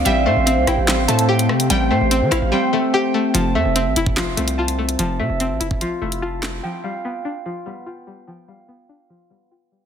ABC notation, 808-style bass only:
X:1
M:4/4
L:1/16
Q:1/4=146
K:Flyd
V:1 name="808-style bass" clef=bass
A,,,2 A,, A,,,2 C,, A,,, A,,,3 A,,4 C,2 | A,,,2 A,, A,,,2 E, A,,, A,,, z8 | F,,,2 F,, F,,,2 A,,, F,,,4 C,,6 | F,,,2 C, F,,,2 A,,, F,,,2 z2 F,,,6 |
z16 | z16 |]